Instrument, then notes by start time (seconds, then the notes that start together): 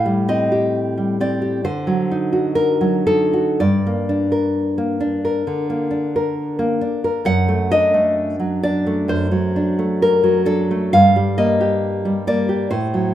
nylon-string guitar
Already playing: A2 F5
0.06 G3
0.28 C4 D#5
0.52 G4
0.98 G3
1.20 C4 D5
1.42 G4
1.65 D3 C5
1.87 F#3
2.11 D#4
2.33 F#4
2.55 A#4
2.81 F#3
3.07 D#4 A4
3.33 F#4
3.60 G2 D5
3.87 A#3
4.09 D4
4.32 A#4
4.78 A#3
5.00 D4
5.25 A#4
5.47 D3
5.70 A#3
5.91 D4
6.16 A#4
6.59 A#3
6.81 D4
7.04 A#4
7.25 F#2 F#5
7.48 A3
7.71 D4 D#5
7.94 A3
8.40 F#3
8.63 D4 D5
8.87 A3
9.08 F#2 C5
9.31 F#3
9.56 D4
9.79 A3
10.02 A#4
10.23 F#3
10.46 D4 A4
10.71 A3
10.93 G2 F5
11.16 G3
11.38 A#3 D#5
11.61 G4
12.05 G3
12.27 A#3 D5
12.49 G4
12.71 A2 C5
12.94 F#3